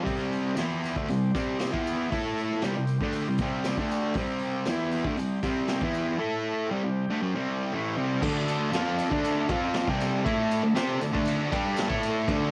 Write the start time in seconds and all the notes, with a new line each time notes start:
0.03 C3 G3 C4 G4, kick, open hi-hat
0.07 G5 C6, tambourine
0.33 open hi-hat, tambourine
0.56 E3 B3 E4, snare, open hi-hat, tambourine
0.84 open hi-hat, tambourine
0.96 D3 A3, kick
1.08 C3 G3, open hi-hat, tambourine
1.35 C3 G3 C4, kick, open hi-hat, tambourine
1.59 snare, open hi-hat, tambourine
1.72 E3 B3 E4, kick
1.86 open hi-hat, tambourine
2.11 A3 E4 A4 E5 A5, kick, open hi-hat, tambourine
2.38 open hi-hat, tambourine
2.51 snare
2.62 C3 G3 G4 G5 C6, snare, open hi-hat, tambourine
2.77 C3 G3
2.87 open hi-hat, tambourine
3.00 D3 A3 D4, kick
3.12 open hi-hat, tambourine
3.28 C3 G3
3.37 C3, kick, open hi-hat, tambourine
3.41 G3 C4
3.64 snare, open hi-hat, tambourine
3.77 D3 A3 D4, kick
3.88 open hi-hat, tambourine
4.14 C3, kick, open hi-hat, tambourine
4.18 G3 C4
4.39 open hi-hat
4.43 tambourine
4.65 E3 B3 E4, snare, open hi-hat, tambourine
4.91 open hi-hat, tambourine
5.05 D3 A3, kick
5.17 C3 G3, open hi-hat, tambourine
5.43 C3 G3 C4, kick, open hi-hat, tambourine
5.68 snare, open hi-hat, tambourine
5.81 E3 B3 E4, kick
5.94 open hi-hat, tambourine
6.18 A3 E4 A4 E5 A5
6.65 G4 C5 G5
6.69 C3 G3
6.84 C3 G3
7.10 D3 A3
7.21 F#3 C#4
7.35 C3 G3 C4
7.73 A2 E3 A3
7.97 C3 G3 C4
8.19 D3 A3 A4 D5 A5, kick, crash
8.24 D4
8.48 ride, tambourine
8.72 F3 C4 F4, snare, ride, tambourine
8.98 ride, tambourine
9.11 D3 A3 D4, kick
9.24 ride, tambourine
9.49 F3 C4 F4, kick, ride
9.74 snare, ride, tambourine
9.88 C3 G3 C4, kick
10.00 snare, ride, tambourine
10.25 A3 E4 A4, kick, ride
10.51 ride, tambourine
10.63 D3 A3
10.75 C4 G4 C5, snare, ride, tambourine
11.01 D3 A3, ride, tambourine
11.12 D3 A3 D4, kick
11.25 ride, tambourine
11.51 G3 D4 G4, kick, ride
11.77 snare, ride, tambourine
11.89 A3 E4 A4, kick
12.03 ride, tambourine
12.26 D3 A3 A4 D5 A5, kick, ride
12.30 D4